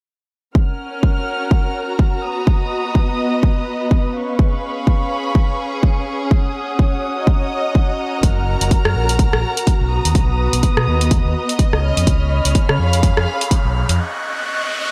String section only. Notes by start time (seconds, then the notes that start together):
0.55 C#4
1.13 F#4
1.32 A#5
2.23 B3
2.58 D#5
4.15 C#4
4.44 G#4 B5
6.96 F#4
7.19 D#5 A#5
9.91 B3
10.79 D#5
11.83 C#4
12.53 G#4
12.62 F5
12.80 B5